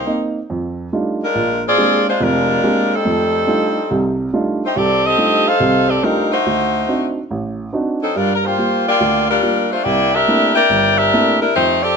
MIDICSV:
0, 0, Header, 1, 3, 480
1, 0, Start_track
1, 0, Tempo, 424628
1, 1533, Time_signature, 4, 2, 24, 8
1, 13529, End_track
2, 0, Start_track
2, 0, Title_t, "Saxophone section"
2, 0, Program_c, 0, 65
2, 0, Note_on_c, 0, 58, 68
2, 0, Note_on_c, 0, 63, 73
2, 0, Note_on_c, 0, 67, 73
2, 0, Note_on_c, 0, 72, 83
2, 354, Note_off_c, 0, 58, 0
2, 354, Note_off_c, 0, 72, 0
2, 355, Note_off_c, 0, 63, 0
2, 355, Note_off_c, 0, 67, 0
2, 1399, Note_on_c, 0, 56, 70
2, 1402, Note_on_c, 0, 62, 69
2, 1405, Note_on_c, 0, 65, 66
2, 1406, Note_on_c, 0, 70, 88
2, 1835, Note_off_c, 0, 56, 0
2, 1836, Note_off_c, 0, 62, 0
2, 1838, Note_off_c, 0, 65, 0
2, 1839, Note_off_c, 0, 70, 0
2, 1892, Note_on_c, 0, 65, 92
2, 1898, Note_on_c, 0, 74, 105
2, 1899, Note_on_c, 0, 60, 93
2, 1902, Note_on_c, 0, 68, 92
2, 2322, Note_off_c, 0, 65, 0
2, 2325, Note_off_c, 0, 74, 0
2, 2326, Note_off_c, 0, 60, 0
2, 2327, Note_off_c, 0, 68, 0
2, 2360, Note_on_c, 0, 56, 70
2, 2362, Note_on_c, 0, 65, 64
2, 2363, Note_on_c, 0, 62, 68
2, 2363, Note_on_c, 0, 72, 80
2, 2495, Note_off_c, 0, 56, 0
2, 2497, Note_off_c, 0, 62, 0
2, 2497, Note_off_c, 0, 65, 0
2, 2497, Note_off_c, 0, 72, 0
2, 2519, Note_on_c, 0, 62, 84
2, 2520, Note_on_c, 0, 56, 77
2, 2523, Note_on_c, 0, 65, 78
2, 2527, Note_on_c, 0, 70, 96
2, 3309, Note_off_c, 0, 62, 0
2, 3310, Note_off_c, 0, 56, 0
2, 3312, Note_off_c, 0, 65, 0
2, 3313, Note_off_c, 0, 70, 0
2, 3337, Note_on_c, 0, 55, 70
2, 3341, Note_on_c, 0, 69, 80
2, 3342, Note_on_c, 0, 60, 66
2, 3347, Note_on_c, 0, 63, 66
2, 4757, Note_off_c, 0, 55, 0
2, 4759, Note_off_c, 0, 69, 0
2, 4760, Note_off_c, 0, 60, 0
2, 4762, Note_off_c, 0, 63, 0
2, 5258, Note_on_c, 0, 57, 68
2, 5258, Note_on_c, 0, 63, 71
2, 5262, Note_on_c, 0, 72, 75
2, 5265, Note_on_c, 0, 67, 68
2, 5385, Note_off_c, 0, 63, 0
2, 5386, Note_off_c, 0, 57, 0
2, 5386, Note_off_c, 0, 67, 0
2, 5388, Note_off_c, 0, 72, 0
2, 5398, Note_on_c, 0, 60, 88
2, 5398, Note_on_c, 0, 74, 98
2, 5400, Note_on_c, 0, 67, 83
2, 5401, Note_on_c, 0, 69, 84
2, 5700, Note_off_c, 0, 67, 0
2, 5701, Note_off_c, 0, 60, 0
2, 5703, Note_off_c, 0, 69, 0
2, 5709, Note_off_c, 0, 74, 0
2, 5713, Note_on_c, 0, 67, 90
2, 5714, Note_on_c, 0, 60, 86
2, 5716, Note_on_c, 0, 69, 96
2, 5716, Note_on_c, 0, 75, 108
2, 6181, Note_off_c, 0, 69, 0
2, 6185, Note_off_c, 0, 67, 0
2, 6186, Note_off_c, 0, 60, 0
2, 6187, Note_off_c, 0, 75, 0
2, 6187, Note_on_c, 0, 77, 95
2, 6195, Note_on_c, 0, 69, 90
2, 6199, Note_on_c, 0, 63, 77
2, 6199, Note_on_c, 0, 72, 92
2, 6653, Note_off_c, 0, 69, 0
2, 6659, Note_on_c, 0, 60, 77
2, 6660, Note_on_c, 0, 67, 82
2, 6662, Note_off_c, 0, 77, 0
2, 6667, Note_on_c, 0, 69, 80
2, 6668, Note_off_c, 0, 63, 0
2, 6668, Note_off_c, 0, 72, 0
2, 6668, Note_on_c, 0, 74, 85
2, 6806, Note_off_c, 0, 60, 0
2, 6815, Note_on_c, 0, 55, 79
2, 6816, Note_off_c, 0, 67, 0
2, 6819, Note_off_c, 0, 69, 0
2, 6819, Note_on_c, 0, 60, 72
2, 6820, Note_off_c, 0, 74, 0
2, 6828, Note_on_c, 0, 63, 71
2, 6828, Note_on_c, 0, 70, 83
2, 7129, Note_off_c, 0, 63, 0
2, 7138, Note_off_c, 0, 55, 0
2, 7140, Note_off_c, 0, 60, 0
2, 7142, Note_on_c, 0, 63, 72
2, 7143, Note_on_c, 0, 57, 75
2, 7144, Note_off_c, 0, 70, 0
2, 7145, Note_on_c, 0, 72, 82
2, 7146, Note_on_c, 0, 66, 66
2, 8055, Note_off_c, 0, 57, 0
2, 8055, Note_off_c, 0, 63, 0
2, 8056, Note_off_c, 0, 72, 0
2, 8057, Note_off_c, 0, 66, 0
2, 9071, Note_on_c, 0, 63, 67
2, 9072, Note_on_c, 0, 60, 64
2, 9074, Note_on_c, 0, 54, 63
2, 9076, Note_on_c, 0, 69, 73
2, 9211, Note_off_c, 0, 63, 0
2, 9212, Note_off_c, 0, 60, 0
2, 9213, Note_off_c, 0, 54, 0
2, 9214, Note_off_c, 0, 69, 0
2, 9235, Note_on_c, 0, 62, 79
2, 9239, Note_on_c, 0, 65, 71
2, 9240, Note_on_c, 0, 70, 84
2, 9241, Note_on_c, 0, 55, 69
2, 9426, Note_off_c, 0, 70, 0
2, 9440, Note_on_c, 0, 70, 62
2, 9441, Note_off_c, 0, 62, 0
2, 9444, Note_off_c, 0, 65, 0
2, 9445, Note_off_c, 0, 55, 0
2, 9542, Note_off_c, 0, 70, 0
2, 9557, Note_on_c, 0, 67, 80
2, 9558, Note_on_c, 0, 72, 85
2, 9560, Note_on_c, 0, 58, 73
2, 9562, Note_on_c, 0, 65, 77
2, 10028, Note_off_c, 0, 67, 0
2, 10028, Note_off_c, 0, 72, 0
2, 10029, Note_off_c, 0, 58, 0
2, 10030, Note_off_c, 0, 65, 0
2, 10042, Note_on_c, 0, 67, 76
2, 10042, Note_on_c, 0, 74, 78
2, 10044, Note_on_c, 0, 58, 81
2, 10046, Note_on_c, 0, 65, 76
2, 10477, Note_off_c, 0, 67, 0
2, 10477, Note_off_c, 0, 74, 0
2, 10478, Note_off_c, 0, 58, 0
2, 10479, Note_off_c, 0, 65, 0
2, 10515, Note_on_c, 0, 62, 77
2, 10515, Note_on_c, 0, 70, 79
2, 10523, Note_on_c, 0, 55, 80
2, 10526, Note_on_c, 0, 65, 80
2, 10953, Note_off_c, 0, 62, 0
2, 10953, Note_off_c, 0, 70, 0
2, 10957, Note_off_c, 0, 55, 0
2, 10959, Note_off_c, 0, 65, 0
2, 10989, Note_on_c, 0, 62, 73
2, 10990, Note_on_c, 0, 57, 76
2, 11000, Note_on_c, 0, 72, 82
2, 11004, Note_on_c, 0, 65, 73
2, 11121, Note_on_c, 0, 67, 84
2, 11121, Note_on_c, 0, 74, 101
2, 11127, Note_on_c, 0, 58, 89
2, 11127, Note_on_c, 0, 64, 89
2, 11141, Note_off_c, 0, 57, 0
2, 11141, Note_off_c, 0, 62, 0
2, 11146, Note_off_c, 0, 72, 0
2, 11148, Note_off_c, 0, 65, 0
2, 11451, Note_off_c, 0, 67, 0
2, 11451, Note_off_c, 0, 74, 0
2, 11453, Note_off_c, 0, 64, 0
2, 11454, Note_off_c, 0, 58, 0
2, 11458, Note_on_c, 0, 62, 85
2, 11462, Note_on_c, 0, 70, 81
2, 11465, Note_on_c, 0, 67, 91
2, 11468, Note_on_c, 0, 76, 106
2, 11919, Note_off_c, 0, 70, 0
2, 11925, Note_on_c, 0, 64, 86
2, 11931, Note_on_c, 0, 74, 88
2, 11933, Note_on_c, 0, 70, 86
2, 11934, Note_on_c, 0, 79, 100
2, 11937, Note_off_c, 0, 62, 0
2, 11941, Note_off_c, 0, 67, 0
2, 11943, Note_off_c, 0, 76, 0
2, 12377, Note_off_c, 0, 64, 0
2, 12380, Note_off_c, 0, 74, 0
2, 12381, Note_off_c, 0, 70, 0
2, 12382, Note_off_c, 0, 79, 0
2, 12409, Note_on_c, 0, 62, 93
2, 12412, Note_on_c, 0, 67, 89
2, 12412, Note_on_c, 0, 70, 82
2, 12414, Note_on_c, 0, 76, 110
2, 12878, Note_off_c, 0, 70, 0
2, 12881, Note_off_c, 0, 62, 0
2, 12891, Note_on_c, 0, 64, 68
2, 12891, Note_on_c, 0, 70, 87
2, 12893, Note_on_c, 0, 55, 70
2, 12894, Note_off_c, 0, 67, 0
2, 12894, Note_on_c, 0, 62, 65
2, 12895, Note_off_c, 0, 76, 0
2, 13040, Note_off_c, 0, 64, 0
2, 13040, Note_off_c, 0, 70, 0
2, 13041, Note_off_c, 0, 55, 0
2, 13042, Note_off_c, 0, 62, 0
2, 13056, Note_on_c, 0, 67, 79
2, 13058, Note_on_c, 0, 63, 82
2, 13060, Note_on_c, 0, 72, 99
2, 13062, Note_on_c, 0, 57, 86
2, 13355, Note_off_c, 0, 67, 0
2, 13356, Note_off_c, 0, 63, 0
2, 13357, Note_off_c, 0, 72, 0
2, 13358, Note_off_c, 0, 57, 0
2, 13373, Note_on_c, 0, 74, 103
2, 13375, Note_on_c, 0, 67, 89
2, 13375, Note_on_c, 0, 69, 92
2, 13378, Note_on_c, 0, 60, 92
2, 13529, Note_off_c, 0, 60, 0
2, 13529, Note_off_c, 0, 67, 0
2, 13529, Note_off_c, 0, 69, 0
2, 13529, Note_off_c, 0, 74, 0
2, 13529, End_track
3, 0, Start_track
3, 0, Title_t, "Upright piano"
3, 0, Program_c, 1, 0
3, 77, Note_on_c, 1, 58, 45
3, 80, Note_on_c, 1, 63, 49
3, 81, Note_on_c, 1, 60, 38
3, 423, Note_off_c, 1, 58, 0
3, 425, Note_off_c, 1, 60, 0
3, 425, Note_off_c, 1, 63, 0
3, 564, Note_on_c, 1, 41, 53
3, 985, Note_off_c, 1, 41, 0
3, 1045, Note_on_c, 1, 55, 44
3, 1047, Note_on_c, 1, 57, 37
3, 1048, Note_on_c, 1, 63, 42
3, 1049, Note_on_c, 1, 62, 41
3, 1053, Note_on_c, 1, 65, 49
3, 1387, Note_off_c, 1, 55, 0
3, 1388, Note_off_c, 1, 57, 0
3, 1389, Note_off_c, 1, 63, 0
3, 1390, Note_off_c, 1, 62, 0
3, 1392, Note_off_c, 1, 65, 0
3, 1526, Note_on_c, 1, 34, 49
3, 1947, Note_off_c, 1, 34, 0
3, 2013, Note_on_c, 1, 56, 44
3, 2014, Note_on_c, 1, 58, 40
3, 2017, Note_on_c, 1, 62, 40
3, 2020, Note_on_c, 1, 60, 35
3, 2023, Note_on_c, 1, 67, 48
3, 2352, Note_off_c, 1, 56, 0
3, 2352, Note_off_c, 1, 58, 0
3, 2354, Note_off_c, 1, 62, 0
3, 2355, Note_off_c, 1, 60, 0
3, 2357, Note_off_c, 1, 67, 0
3, 2492, Note_on_c, 1, 29, 63
3, 2494, Note_on_c, 1, 41, 66
3, 2910, Note_off_c, 1, 29, 0
3, 2911, Note_off_c, 1, 41, 0
3, 2979, Note_on_c, 1, 56, 43
3, 2982, Note_on_c, 1, 60, 41
3, 2985, Note_on_c, 1, 58, 39
3, 2987, Note_on_c, 1, 62, 39
3, 2988, Note_on_c, 1, 67, 47
3, 3315, Note_off_c, 1, 56, 0
3, 3316, Note_off_c, 1, 60, 0
3, 3318, Note_off_c, 1, 58, 0
3, 3319, Note_off_c, 1, 62, 0
3, 3319, Note_off_c, 1, 67, 0
3, 3451, Note_on_c, 1, 57, 48
3, 3452, Note_on_c, 1, 41, 52
3, 3870, Note_off_c, 1, 41, 0
3, 3870, Note_off_c, 1, 57, 0
3, 3923, Note_on_c, 1, 55, 46
3, 3924, Note_on_c, 1, 62, 40
3, 3931, Note_on_c, 1, 57, 39
3, 3932, Note_on_c, 1, 65, 50
3, 3934, Note_on_c, 1, 63, 37
3, 4267, Note_off_c, 1, 55, 0
3, 4268, Note_off_c, 1, 62, 0
3, 4271, Note_off_c, 1, 57, 0
3, 4272, Note_off_c, 1, 65, 0
3, 4273, Note_off_c, 1, 63, 0
3, 4414, Note_on_c, 1, 48, 61
3, 4416, Note_on_c, 1, 36, 61
3, 4831, Note_off_c, 1, 48, 0
3, 4832, Note_off_c, 1, 36, 0
3, 4893, Note_on_c, 1, 55, 42
3, 4899, Note_on_c, 1, 62, 42
3, 4900, Note_on_c, 1, 63, 43
3, 4902, Note_on_c, 1, 57, 44
3, 4903, Note_on_c, 1, 65, 55
3, 5232, Note_off_c, 1, 55, 0
3, 5235, Note_off_c, 1, 62, 0
3, 5236, Note_off_c, 1, 57, 0
3, 5236, Note_off_c, 1, 63, 0
3, 5237, Note_off_c, 1, 65, 0
3, 5380, Note_on_c, 1, 48, 48
3, 5383, Note_on_c, 1, 36, 52
3, 5795, Note_off_c, 1, 48, 0
3, 5796, Note_off_c, 1, 36, 0
3, 5848, Note_on_c, 1, 55, 46
3, 5853, Note_on_c, 1, 62, 39
3, 5855, Note_on_c, 1, 57, 39
3, 5864, Note_on_c, 1, 65, 47
3, 5866, Note_on_c, 1, 63, 44
3, 6190, Note_off_c, 1, 55, 0
3, 6192, Note_off_c, 1, 62, 0
3, 6193, Note_off_c, 1, 57, 0
3, 6198, Note_off_c, 1, 65, 0
3, 6199, Note_off_c, 1, 63, 0
3, 6329, Note_on_c, 1, 48, 66
3, 6334, Note_on_c, 1, 36, 64
3, 6749, Note_off_c, 1, 48, 0
3, 6752, Note_off_c, 1, 36, 0
3, 6818, Note_on_c, 1, 62, 43
3, 6819, Note_on_c, 1, 55, 46
3, 6820, Note_on_c, 1, 57, 41
3, 6826, Note_on_c, 1, 63, 44
3, 6831, Note_on_c, 1, 65, 53
3, 7155, Note_off_c, 1, 55, 0
3, 7155, Note_off_c, 1, 62, 0
3, 7156, Note_off_c, 1, 57, 0
3, 7159, Note_off_c, 1, 63, 0
3, 7161, Note_off_c, 1, 65, 0
3, 7305, Note_on_c, 1, 38, 56
3, 7718, Note_off_c, 1, 38, 0
3, 7780, Note_on_c, 1, 60, 44
3, 7785, Note_on_c, 1, 62, 39
3, 7786, Note_on_c, 1, 66, 48
3, 7790, Note_on_c, 1, 63, 40
3, 8116, Note_off_c, 1, 60, 0
3, 8118, Note_off_c, 1, 62, 0
3, 8119, Note_off_c, 1, 66, 0
3, 8121, Note_off_c, 1, 63, 0
3, 8259, Note_on_c, 1, 33, 59
3, 8674, Note_off_c, 1, 33, 0
3, 8734, Note_on_c, 1, 60, 43
3, 8742, Note_on_c, 1, 62, 41
3, 8744, Note_on_c, 1, 63, 43
3, 8747, Note_on_c, 1, 66, 48
3, 9073, Note_off_c, 1, 60, 0
3, 9077, Note_off_c, 1, 62, 0
3, 9078, Note_off_c, 1, 63, 0
3, 9079, Note_off_c, 1, 66, 0
3, 9218, Note_on_c, 1, 43, 49
3, 9221, Note_on_c, 1, 55, 46
3, 9634, Note_off_c, 1, 43, 0
3, 9635, Note_off_c, 1, 55, 0
3, 9699, Note_on_c, 1, 55, 44
3, 9702, Note_on_c, 1, 58, 38
3, 9709, Note_on_c, 1, 65, 49
3, 10036, Note_off_c, 1, 55, 0
3, 10037, Note_off_c, 1, 58, 0
3, 10040, Note_off_c, 1, 65, 0
3, 10177, Note_on_c, 1, 38, 61
3, 10593, Note_off_c, 1, 38, 0
3, 10652, Note_on_c, 1, 55, 48
3, 10655, Note_on_c, 1, 58, 41
3, 10658, Note_on_c, 1, 65, 46
3, 10992, Note_off_c, 1, 55, 0
3, 10993, Note_off_c, 1, 58, 0
3, 10995, Note_off_c, 1, 65, 0
3, 11139, Note_on_c, 1, 36, 53
3, 11554, Note_off_c, 1, 36, 0
3, 11620, Note_on_c, 1, 57, 42
3, 11622, Note_on_c, 1, 60, 36
3, 11626, Note_on_c, 1, 58, 39
3, 11628, Note_on_c, 1, 64, 53
3, 11630, Note_on_c, 1, 62, 42
3, 11956, Note_off_c, 1, 57, 0
3, 11957, Note_off_c, 1, 60, 0
3, 11959, Note_off_c, 1, 58, 0
3, 11959, Note_off_c, 1, 64, 0
3, 11961, Note_off_c, 1, 62, 0
3, 12093, Note_on_c, 1, 31, 65
3, 12511, Note_off_c, 1, 31, 0
3, 12584, Note_on_c, 1, 58, 43
3, 12586, Note_on_c, 1, 60, 44
3, 12588, Note_on_c, 1, 57, 51
3, 12591, Note_on_c, 1, 62, 43
3, 12593, Note_on_c, 1, 64, 51
3, 12918, Note_off_c, 1, 58, 0
3, 12918, Note_off_c, 1, 60, 0
3, 12919, Note_off_c, 1, 57, 0
3, 12921, Note_off_c, 1, 62, 0
3, 12922, Note_off_c, 1, 64, 0
3, 13064, Note_on_c, 1, 41, 52
3, 13476, Note_off_c, 1, 41, 0
3, 13529, End_track
0, 0, End_of_file